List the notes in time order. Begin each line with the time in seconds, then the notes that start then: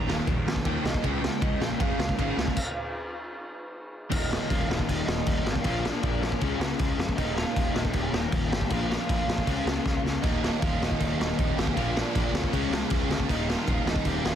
Already playing: A#5
0.07 D#1 D#2 A#2 D#3, snare
0.27 D#1 D#2 A#2 D#3, kick, ride
0.45 A#1 D#2 A#2, snare
0.56 kick
0.65 D#2 A#2 D#3 G5, kick, ride
0.84 C2 D#2 A#2 D#3 D#5, snare
0.94 kick
1.03 C#2 C#3 G#3 C#4 G5, kick, ride
1.22 C#3 G#3 G5, snare
1.41 C#2 C#3 G#3 C#4 D#5, kick, ride
1.60 A#1 C#3 G#3 C#4 G5, snare
1.79 G#1 C#3 G#3 C#4 F5, kick, ride
1.98 C#2 C#3 G#3, snare
2.09 kick
2.18 G#1 C#3 G#3 C#4, kick, ride
2.37 C#2 C#3 G#3 C#4, snare
2.47 kick
2.56 kick, crash
4.10 D#1 D#2 A#2 D#3 G3 A#3 D#4, kick, crash
4.16 D#5
4.33 D#4 D#5, snare
4.48 D#1 F4 F5, kick, crash
4.68 D#1 D#4 D#5, snare
4.79 kick
4.89 D#1, kick, crash
5.08 D#1 D#4 D#5, snare
5.26 D#1 D#4 D#5, kick, crash
5.45 G#1 G4 G5, snare
5.55 kick
5.62 A#1 A#2 F3 A#3 D4 F4 F5, kick, crash
5.66 F4
5.83 D4 D5, snare
6.02 A#1 D4 D5, kick, crash
6.22 A#1 C#4 C#5, snare
6.32 kick
6.40 C#2 C#3 G#3 C#4 F4 G#4, kick, crash
6.59 C#2, snare
6.79 C#2, kick, crash
6.98 F2, snare
7.09 kick
7.16 D#1 D#2 A#2 D#3 G3 A#3 D#4 D#5, kick, crash
7.36 F4 F5, snare
7.56 D#1, kick, crash
7.71 D#1 D#4 D#5
7.76 snare
7.85 kick
7.92 D#1 G4 G5, kick, crash
8.04 G#5
8.10 D#1 A#4 A#5, snare
8.32 D#1, kick, crash
8.48 G#1 G4 G5
8.53 snare
8.61 kick
8.69 A#1 A#2 F3 A#3 D4 F4 F5, kick, crash
8.88 F4 F5, snare
9.09 A#1, kick, crash
9.27 A#1, snare
9.38 kick
9.45 C#2 C#3 G#3 C#4 F4 G#4, kick, crash
9.65 C#2, snare
9.86 C#2, kick, snare
10.04 C#2, snare
10.22 D#1 D#2 A#2 D#3 G3 A#3 D#4 D#5, kick, crash
10.42 D#4 D#5, snare
10.60 D#1 F4 F5, kick, crash
10.80 D#1 D#4 D#5, snare
10.91 kick
11.00 D#1, kick, crash
11.19 D#1 D#4 D#5, snare
11.37 D#1 D#4 D#5, kick, crash
11.57 G#1 D#2 A#2 D#3 G3 A#3 D#4 G4 G5, snare
11.67 kick
11.75 A#1 A#2 F3 A#3 D4 F4 F5, kick, crash
11.97 D4 D5, snare
12.15 A#1 D4 D5, kick, crash
12.32 D2 C#4 C#5, snare
12.44 kick
12.52 C#2 C#3 G#3 C#4 F4 G#4, kick, crash
12.70 C#2, snare
12.90 C#2, kick, crash
13.09 D2, snare
13.20 kick
13.28 D#1 D#2 A#2 D#3 G3 A#3 D#4 D#5, kick, crash
13.48 F4 F5, snare
13.68 D#1 F4 F5, kick, crash
13.85 D#1 D#4 D#5, snare
13.96 kick
14.04 D#1 G4 G5, kick, crash
14.24 D#1 F4 F5, snare